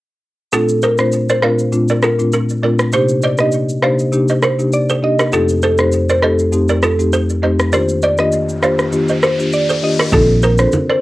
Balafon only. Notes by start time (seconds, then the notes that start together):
0.53 F4 A4
0.83 A4 C5
1.30 A#4 D5
1.43 D5 F5
1.90 A#4 D5
2.03 F4 A4
2.33 F4 A#4
2.63 A#4 D5
2.93 G4 C5
3.23 C5 D#5
3.83 D5 F5
4.30 C5 D#5
4.43 G4 A#4
4.90 A4 C5
5.20 G4 A#4
5.33 F4 A4
5.63 A4 C5
6.10 A#4 D5
6.23 C5 D#5
6.69 A#4 D5
6.83 F4 A4
7.13 A4 C5
7.43 C5 D#5
7.73 A#4 D5
8.03 C5 D#5
8.63 D5 F5
9.09 C5 D#5
9.23 G4 A#4
9.69 A4 C5
10.00 G4 A#4
10.13 F4 A4
10.43 A4 C5
10.90 A#4 D5